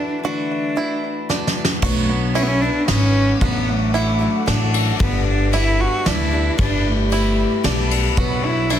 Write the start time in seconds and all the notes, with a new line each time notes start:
Already playing: E3 A3 D4 E4 F#4
0.23 D3 E3 A3 D4 E4 F#4
0.76 E3 A3 E4 F#4
1.29 E3 A3 D4 E4 F#4, snare
1.47 snare
1.65 snare
1.82 B1 B2 F#3 A3 B3 D4 F#4 B4 F#5 D6, kick, crash
2.09 B3
2.34 F#3 B3 C#4 D4 E4 F#4, ride
2.43 B3
2.48 C#4
2.61 B3 D4 F#4
2.88 G#1 F#3 B3 C#4, snare, ride
2.92 F#4
3.40 A1 A2 D3 F#3 A3 B3 D4 F#4 A4, kick, ride
3.68 A3
3.94 F#3 A3 D4 E4 F#4, ride
4.19 F#3 A3 D4 F#4
4.46 A1 F#3 A3 D4 F#4, snare, ride
4.74 ride
4.99 G1 G2 D3 G3 B3 D4 G4 D5 B5, kick, ride
5.28 D4
5.52 G3 B3 D4 E4 G4, ride
5.81 F#4
6.05 D2 G3 B3 D4 E4 G4, snare, ride
6.31 G3 B3 D4 G4
6.58 G1 G3 B3 D4 E4 G4 E5, kick, ride
6.87 A3
7.10 G3 B3 E4 G4, ride
7.64 B1 G3 B3 D4 E4 G4, snare, ride
7.91 ride
8.17 B1 B2 F#3 B3 D4 F#4 D5, kick, ride
8.45 E4
8.69 F#3 B3 D4 E4 F#4, ride